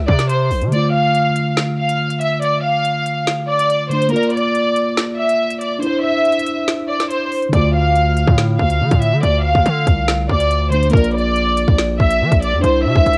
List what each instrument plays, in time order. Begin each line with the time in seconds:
0.07 808-style bass C3, violin section D5, kick
0.19 snare, closed hi-hat
0.29 violin section C5, closed hi-hat
0.51 808-style bass A#1, open hi-hat
0.61 808-style bass C3, closed hi-hat
0.68 tine electric piano D3 A3
0.72 tine electric piano F4, violin section D5, closed hi-hat
0.93 violin section F5
1.15 closed hi-hat
1.36 closed hi-hat
1.57 snare, closed hi-hat
1.78 violin section F5
1.89 closed hi-hat
2.10 closed hi-hat
2.21 violin section E5, closed hi-hat
2.42 violin section D5, closed hi-hat
2.63 violin section F5
2.85 closed hi-hat
3.06 closed hi-hat
3.27 snare, closed hi-hat
3.49 violin section D5
3.59 closed hi-hat
3.70 closed hi-hat
3.89 tine electric piano D3 A3 D4, violin section C5, closed hi-hat
4.02 closed hi-hat
4.09 tine electric piano A#3 F4, closed hi-hat
4.13 violin section A#4, tine electric piano D5, closed hi-hat
4.23 closed hi-hat
4.30 closed hi-hat
4.34 violin section D5, closed hi-hat
4.55 closed hi-hat
4.76 closed hi-hat
4.97 snare, closed hi-hat
5.19 violin section E5
5.29 closed hi-hat
5.51 closed hi-hat
5.61 violin section D5, closed hi-hat
5.79 tine electric piano D4 E4, violin section C5, closed hi-hat
5.87 tine electric piano C5
6.04 violin section E5
6.25 closed hi-hat
6.32 closed hi-hat
6.39 closed hi-hat
6.47 closed hi-hat
6.68 snare, closed hi-hat
6.88 violin section D5
7.00 snare, closed hi-hat
7.10 violin section C5, closed hi-hat
7.32 open hi-hat
7.42 closed hi-hat
7.49 808-style bass D2, tine electric piano D3 A3, kick, closed hi-hat
7.53 tine electric piano F4, violin section D5
7.74 violin section F5
7.95 closed hi-hat
8.17 closed hi-hat
8.27 808-style bass A2, kick
8.38 snare, closed hi-hat
8.59 808-style bass D2, violin section F5, kick
8.70 closed hi-hat
8.81 808-style bass D3
8.91 808-style bass A2, kick, closed hi-hat
9.02 violin section E5, closed hi-hat
9.13 808-style bass D3
9.23 808-style bass D2, violin section D5, closed hi-hat
9.44 violin section F5
9.55 808-style bass D2, kick
9.66 808-style bass D3, closed hi-hat
9.87 808-style bass C2, kick, closed hi-hat
10.08 snare, closed hi-hat
10.29 808-style bass D2, violin section D5, kick
10.40 closed hi-hat
10.51 closed hi-hat
10.70 tine electric piano D3 A3 D4, violin section C5, closed hi-hat
10.83 closed hi-hat
10.89 808-style bass A#1, tine electric piano A#3 F4, kick, closed hi-hat
10.94 violin section A#4, tine electric piano D5, closed hi-hat
11.04 closed hi-hat
11.11 closed hi-hat
11.15 violin section D5, closed hi-hat
11.36 closed hi-hat
11.57 closed hi-hat
11.68 808-style bass A#1, kick
11.78 snare, closed hi-hat
12.00 808-style bass A#1, violin section E5, kick
12.10 closed hi-hat
12.21 808-style bass F3
12.32 808-style bass A#1, kick, closed hi-hat
12.42 violin section D5, closed hi-hat
12.53 808-style bass F2
12.60 808-style bass C2, tine electric piano D4 E4, violin section C5, closed hi-hat
12.68 tine electric piano C5
12.85 808-style bass C3, violin section E5
12.95 808-style bass C2, kick
13.06 808-style bass C2, closed hi-hat
13.13 closed hi-hat